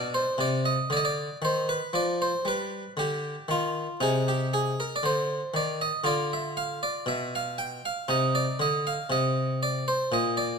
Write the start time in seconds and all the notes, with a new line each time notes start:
Already playing: B2 D4 D5
0.14 C5
0.38 C3 D5
0.65 D#5
0.90 D3 D5
0.97 D#5
1.05 D5
1.42 D#3 C5
1.69 B4
1.93 F3 D5
2.22 C5
2.45 G3 B4
2.97 D3 G4
3.48 D#3 F4
4.01 C3 D#4 G#4
4.28 G4
4.54 G#4
4.80 A#4
4.96 D5
5.03 D3 C5
5.54 D#3 D5
5.81 D#5
6.04 D3 F4 D5
6.33 E5
6.57 F5
6.83 D5
7.06 B2 E5
7.35 F5
7.58 G5
7.85 F5
8.08 C3 D#4 D#5
8.35 D5
8.59 D3 D#5
8.87 F5
9.10 C3 D#5
9.63 D5
9.88 C5
10.12 A#2 D#5
10.37 D5